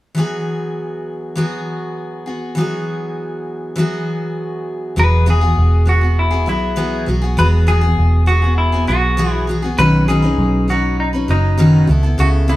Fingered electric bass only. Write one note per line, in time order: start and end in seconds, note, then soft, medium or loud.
4.97 5.53 E1 medium
5.57 6.47 E1 medium
6.47 7.04 B1 medium
7.08 7.35 B1 medium
7.38 7.94 E1 medium
7.98 8.84 E1 medium
8.88 9.74 B1 medium
9.79 10.34 B1 medium
10.38 11.24 B1 loud
11.28 11.84 F#1 medium
11.88 12.16 C#2 medium
12.18 12.56 C#2 medium